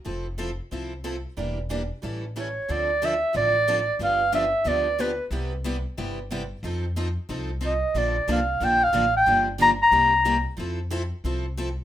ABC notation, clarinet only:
X:1
M:4/4
L:1/16
Q:"Swing" 1/4=182
K:F
V:1 name="Clarinet"
z16 | z12 ^c4 | [K:Dm] d4 e4 d8 | f4 e4 d4 =B3 z |
z16 | z12 _e4 | d4 f4 g2 f4 g2- | g2 z2 b2 b8 z2 |
z16 |]